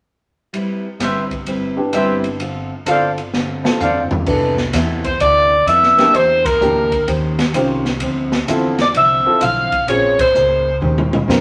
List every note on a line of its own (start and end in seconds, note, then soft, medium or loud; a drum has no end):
0.53 0.86 G3 soft
0.53 0.86 C4 soft
0.53 0.86 E4 soft
0.53 0.87 B4 soft
0.53 ride soft
0.99 1.76 G1 medium
0.99 1.32 G3 soft
0.99 1.33 C4 medium
0.99 1.33 E4 medium
0.99 1.21 G4 medium
0.99 1.21 B4 medium
0.99 1.33 B4 medium
0.99 1.21 C5 medium
0.99 1.21 E5 medium
0.99 snare soft
0.99 hi-hat pedal soft
0.99 ride soft
1.31 kick soft
1.31 ride soft
1.46 1.79 G3 soft
1.46 1.80 C4 soft
1.46 1.80 E4 soft
1.46 1.80 B4 medium
1.46 ride soft
1.76 2.36 B3 soft
1.76 2.37 D4 soft
1.76 2.37 E4 soft
1.76 2.37 G4 soft
1.93 2.70 G1 medium
1.93 2.26 G3 medium
1.93 2.26 C4 medium
1.93 2.27 E4 medium
1.93 2.15 G4 medium
1.93 2.15 B4 medium
1.93 2.27 B4 medium
1.93 2.15 C5 medium
1.93 2.15 E5 medium
1.93 hi-hat pedal soft
1.93 ride medium
2.24 ride soft
2.40 2.72 D3 soft
2.40 2.73 C4 soft
2.40 2.73 F4 soft
2.40 2.74 A4 soft
2.40 ride soft
2.85 3.63 G1 medium
2.85 3.19 D3 medium
2.85 3.14 C4 soft
2.85 3.20 C4 medium
2.85 3.15 E4 soft
2.85 3.15 F4 soft
2.85 3.20 F4 medium
2.85 3.08 A4 medium
2.85 3.15 A4 soft
2.85 3.20 A4 medium
2.85 3.07 C5 medium
2.85 3.08 D5 medium
2.85 3.07 F5 medium
2.85 hi-hat pedal soft
2.85 ride medium
3.18 ride soft
3.33 3.66 D3 soft
3.33 3.67 C4 soft
3.33 3.67 F4 soft
3.33 3.68 A4 soft
3.33 snare soft
3.63 3.78 C4 medium
3.63 3.78 E4 soft
3.63 3.79 F4 soft
3.63 3.79 A4 medium
3.63 snare medium
3.80 4.24 G1 medium
3.80 4.13 D3 medium
3.80 4.13 C4 medium
3.80 4.14 F4 medium
3.80 4.01 A4 medium
3.80 4.14 A4 medium
3.80 4.01 C5 medium
3.80 4.01 D5 medium
3.80 4.01 F5 medium
3.80 floor tom soft
3.80 hi-hat pedal soft
4.11 floor tom medium
4.26 4.72 C2 medium
4.26 4.60 C3 soft
4.26 4.54 B3 medium
4.26 4.60 B3 soft
4.26 4.55 D4 soft
4.26 4.55 E4 soft
4.26 4.60 E4 soft
4.26 4.55 A4 medium
4.26 4.61 A4 soft
4.26 kick medium
4.26 crash medium
4.58 snare soft
4.73 5.19 E2 medium
4.73 5.06 C3 medium
4.73 5.07 B3 medium
4.73 5.07 E4 medium
4.73 5.07 A4 medium
4.73 snare soft
4.73 hi-hat pedal medium
4.73 ride medium
5.04 5.20 C5 medium
5.04 kick soft
5.04 ride soft
5.20 5.66 D2 medium
5.20 5.53 C3 soft
5.20 5.54 B3 soft
5.20 5.54 E4 soft
5.20 5.54 A4 soft
5.20 5.64 D5 medium
5.20 ride medium
5.66 6.12 F2 medium
5.66 6.00 C3 medium
5.66 6.00 B3 medium
5.66 6.00 E4 medium
5.66 6.01 A4 medium
5.66 6.14 E5 medium
5.66 hi-hat pedal medium
5.66 ride medium
5.83 snare soft
5.98 6.12 A#3 medium
5.98 6.12 D4 medium
5.98 6.13 E4 medium
5.98 6.13 G4 medium
5.98 snare soft
5.98 ride soft
6.14 6.59 E2 medium
6.14 6.46 E3 soft
6.14 6.47 D4 soft
6.14 6.47 G4 soft
6.14 6.48 A#4 soft
6.14 6.45 C5 medium
6.14 ride medium
6.45 7.08 A#4 medium
6.45 kick medium
6.45 ride medium
6.60 7.06 D2 medium
6.60 6.93 E3 medium
6.60 6.89 A#3 medium
6.60 6.93 D4 medium
6.60 6.89 D4 soft
6.60 6.89 E4 soft
6.60 6.93 G4 medium
6.60 6.89 G4 medium
6.60 6.94 A#4 medium
6.60 hi-hat pedal medium
6.92 kick soft
6.92 ride soft
7.06 7.53 D#2 medium
7.06 7.39 D#3 medium
7.06 7.40 C#4 medium
7.06 7.40 G4 medium
7.06 7.40 C5 medium
7.06 ride medium
7.39 snare soft
7.39 ride soft
7.53 7.99 C2 medium
7.53 7.86 D#3 medium
7.53 7.82 C4 soft
7.53 7.87 C#4 medium
7.53 7.83 C#4 soft
7.53 7.83 F4 soft
7.53 7.87 G4 medium
7.53 7.83 G4 medium
7.53 7.87 C5 medium
7.53 hi-hat pedal soft
7.53 ride medium
7.85 snare soft
8.00 8.46 D2 medium
8.00 8.33 D3 soft
8.00 8.34 F3 medium
8.00 8.34 C4 soft
8.00 8.35 E4 soft
8.00 ride medium
8.32 snare soft
8.47 8.93 E2 medium
8.47 8.80 D3 medium
8.47 8.80 F3 medium
8.47 8.76 C4 medium
8.47 8.81 C4 medium
8.47 8.76 E4 medium
8.47 8.81 E4 medium
8.47 8.76 F4 medium
8.47 8.76 A4 medium
8.47 hi-hat pedal soft
8.47 ride medium
8.78 8.88 D5 medium
8.78 snare soft
8.78 ride soft
8.94 9.23 C2 medium
8.94 9.27 D3 soft
8.94 9.27 F3 soft
8.94 9.28 C4 soft
8.94 9.28 E4 soft
8.94 9.40 E5 medium
8.94 ride medium
9.25 9.40 C4 medium
9.25 9.40 E4 medium
9.25 9.40 F4 medium
9.25 9.40 A4 medium
9.25 muted upright bass stroke soft
9.40 9.70 B1 medium
9.40 9.73 D3 medium
9.40 9.74 F3 medium
9.40 9.74 C4 medium
9.40 9.74 E4 medium
9.40 9.85 F5 medium
9.40 hi-hat pedal medium
9.40 ride medium
9.72 muted upright bass stroke soft
9.72 kick soft
9.72 ride soft
9.87 10.33 A#1 medium
9.87 10.20 A#3 soft
9.87 10.16 C4 soft
9.87 10.21 C#4 soft
9.87 10.16 C#4 soft
9.87 10.16 F4 soft
9.87 10.21 G#4 soft
9.87 10.16 G#4 medium
9.87 10.21 C5 soft
9.87 10.17 C#5 medium
9.87 ride medium
10.19 10.78 C5 medium
10.19 kick medium
10.19 ride medium
10.34 10.80 C#2 medium
10.34 10.67 A#3 medium
10.34 10.68 C#4 soft
10.34 10.68 G#4 medium
10.34 10.68 C5 medium
10.34 hi-hat pedal medium
10.81 11.27 D#2 medium
10.81 11.14 D#3 soft
10.81 11.15 C#4 soft
10.81 11.15 G4 medium
10.81 11.15 C5 medium
10.81 mid tom soft
10.98 mid tom medium
11.13 mid tom medium
11.28 11.41 F2 medium
11.28 11.41 D#3 medium
11.28 11.41 C4 soft
11.28 11.41 C#4 soft
11.28 11.41 C#4 medium
11.28 11.41 F4 soft
11.28 11.41 G4 medium
11.28 11.41 A#4 medium
11.28 11.41 C5 medium
11.28 snare medium
11.28 hi-hat pedal medium